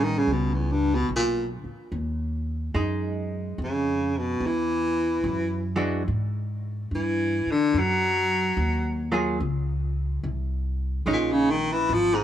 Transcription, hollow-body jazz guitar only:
0.00 0.69 G3 soft
0.00 0.69 B3 medium
0.00 0.70 C#4 medium
2.75 4.00 G#3 medium
2.75 4.01 D#4 medium
5.76 6.02 E3 soft
5.76 6.02 G#3 medium
5.76 6.02 D4 medium
5.76 6.02 F#4 medium
9.12 9.37 F#3 medium
9.12 9.37 A#3 soft
9.12 9.37 F4 medium
9.12 9.38 G#4 medium
11.07 11.55 G#3 medium
11.07 11.55 C#4 medium
11.07 11.56 D#4 medium

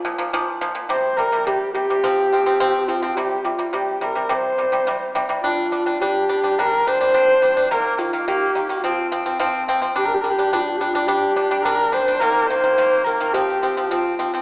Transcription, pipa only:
0.05 0.16 A#2 medium
0.05 0.16 F3 medium
0.18 0.30 A#2 medium
0.18 0.30 F3 medium
0.33 0.56 A#2 loud
0.33 0.56 F3 loud
0.61 0.73 A#2 medium
0.61 0.73 F3 loud
0.75 0.87 A#2 medium
0.75 0.87 F3 medium
0.89 1.12 C3 medium
0.89 1.12 G3 loud
1.18 1.29 C3 medium
1.18 1.30 G3 medium
1.32 1.44 C3 medium
1.32 1.44 G3 medium
1.47 1.69 C3 medium
1.47 1.69 G3 medium
1.75 1.86 C3 medium
1.75 1.86 G3 medium
1.90 2.01 C3 medium
1.90 2.01 G3 medium
2.03 2.26 F3 loud
2.03 2.26 C4 loud
2.32 2.43 F3 medium
2.32 2.44 C4 medium
2.46 2.57 F3 medium
2.46 2.57 C4 medium
2.60 2.83 F3 medium
2.60 2.83 C4 loud
2.88 3.00 F3 medium
2.88 3.00 C4 medium
3.02 3.14 F3 medium
3.02 3.14 C4 medium
3.17 3.39 C3 medium
3.17 3.40 G3 medium
3.45 3.56 C3 medium
3.45 3.56 G3 medium
3.59 3.70 C3 medium
3.59 3.70 G3 medium
3.73 3.96 C3 medium
3.73 3.96 G3 medium
4.01 4.13 C3 medium
4.01 4.13 G3 medium
4.15 4.27 C3 medium
4.15 4.27 G3 medium
4.29 4.52 C3 medium
4.29 4.52 G3 medium
4.58 4.70 C3 medium
4.58 4.70 G3 medium
4.72 4.84 C3 medium
4.72 4.84 G3 medium
4.87 5.10 C3 medium
4.87 5.10 G3 medium
5.15 5.26 C3 medium
5.15 5.27 G3 medium
5.29 5.41 C3 medium
5.29 5.41 G3 medium
5.44 5.66 G3 medium
5.44 5.66 D4 loud
5.72 5.83 G3 medium
5.72 5.83 D4 medium
5.86 5.97 G3 medium
5.86 5.98 D4 medium
6.01 6.23 G3 medium
6.01 6.24 D4 medium
6.29 6.40 G3 medium
6.29 6.40 D4 medium
6.43 6.54 G3 medium
6.43 6.55 D4 medium
6.59 6.81 G3 medium
6.59 6.80 D4 loud
6.87 6.98 G3 medium
6.87 6.98 D4 medium
7.01 7.11 G3 medium
7.01 7.11 D4 medium
7.14 7.36 G3 medium
7.14 7.37 D4 loud
7.42 7.53 G3 medium
7.42 7.53 D4 medium
7.56 7.67 G3 medium
7.56 7.68 D4 medium
7.71 7.93 D#3 medium
7.71 7.93 A#3 medium
7.98 8.10 D#3 medium
7.98 8.10 A#3 medium
8.13 8.24 D#3 medium
8.13 8.24 A#3 medium
8.28 8.50 D#3 medium
8.28 8.50 A#3 medium
8.55 8.66 D#3 medium
8.55 8.67 A#3 medium
8.69 8.81 D#3 medium
8.69 8.81 A#3 medium
8.84 9.06 F3 loud
8.84 9.06 C4 loud
9.12 9.23 F3 medium
9.12 9.23 C4 medium
9.26 9.37 F3 medium
9.26 9.37 C4 medium
9.39 9.62 F3 loud
9.39 9.62 C4 loud
9.68 9.80 F3 medium
9.68 9.80 C4 loud
9.82 9.93 F3 medium
9.82 9.93 C4 medium
9.96 10.19 G3 medium
9.96 10.19 D4 loud
10.24 10.36 G3 medium
10.24 10.36 D4 medium
10.38 10.50 G3 medium
10.38 10.50 D4 medium
10.53 10.76 G3 medium
10.53 10.76 D4 loud
10.81 10.92 G3 medium
10.81 10.92 D4 medium
10.95 11.06 G3 medium
10.95 11.06 D4 medium
11.08 11.31 G3 medium
11.08 11.31 D4 loud
11.36 11.48 G3 medium
11.36 11.48 D4 medium
11.51 11.63 G3 medium
11.51 11.63 D4 medium
11.65 11.88 G3 medium
11.65 11.88 D4 loud
11.92 12.04 G3 medium
11.92 12.05 D4 medium
12.08 12.19 G3 medium
12.08 12.19 D4 medium
12.21 12.44 D#3 medium
12.21 12.44 A#3 loud
12.50 12.61 D#3 medium
12.50 12.62 A#3 medium
12.64 12.75 D#3 medium
12.64 12.75 A#3 medium
12.78 13.01 D#3 medium
12.78 13.01 A#3 medium
13.06 13.18 D#3 medium
13.06 13.18 A#3 medium
13.20 13.32 D#3 medium
13.20 13.32 A#3 medium
13.34 13.57 F3 loud
13.34 13.57 C4 loud
13.62 13.74 F3 medium
13.62 13.74 C4 medium
13.77 13.88 F3 medium
13.77 13.88 C4 medium
13.91 14.14 F3 medium
13.91 14.14 C4 medium
14.19 14.30 F3 medium
14.19 14.31 C4 medium
14.34 14.42 F3 medium
14.34 14.42 C4 medium

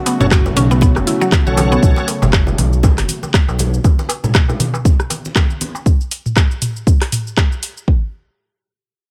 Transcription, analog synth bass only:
0.21 0.52 F#1 medium
0.57 0.98 B1 medium
0.96 1.04 F#1 loud
1.47 1.78 B1 medium
1.83 1.93 B1 loud
2.22 2.53 F#1 medium
2.59 2.99 B1 medium
2.98 3.05 F#1 medium
3.48 3.79 B1 medium

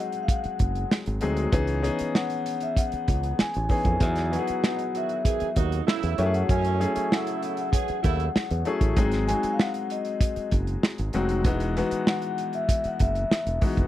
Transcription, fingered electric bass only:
0.45 muted fingered electric bass stroke soft
0.60 0.84 F#1 medium
1.07 1.19 G#1 medium
1.23 1.46 D2 medium
1.53 1.88 C#2 loud
2.01 muted fingered electric bass stroke soft
2.93 muted fingered electric bass stroke soft
3.09 3.32 C#2 medium
3.41 muted fingered electric bass stroke soft
3.56 3.67 A1 medium
3.85 3.97 F2 medium
4.01 4.36 E2 loud
4.50 muted fingered electric bass stroke soft
5.42 muted fingered electric bass stroke soft
5.57 5.80 D#2 medium
6.04 6.15 E2 medium
6.19 6.42 F#2 medium
6.50 6.85 F#2 loud
6.97 muted fingered electric bass stroke soft
7.90 muted fingered electric bass stroke soft
8.05 8.28 D#2 medium
8.36 muted fingered electric bass stroke medium
8.51 8.63 E2 medium
8.81 8.93 A1 medium
8.97 9.32 G#1 medium
9.44 muted fingered electric bass stroke soft
10.37 muted fingered electric bass stroke soft
10.52 10.76 F#1 medium
10.99 11.11 G#1 medium
11.14 11.45 F1 medium
11.45 11.80 E1 medium
11.92 muted fingered electric bass stroke soft
12.85 muted fingered electric bass stroke soft
13.01 13.24 F#1 medium
13.31 muted fingered electric bass stroke soft
13.47 13.58 E1 medium
13.78 13.87 F1 medium

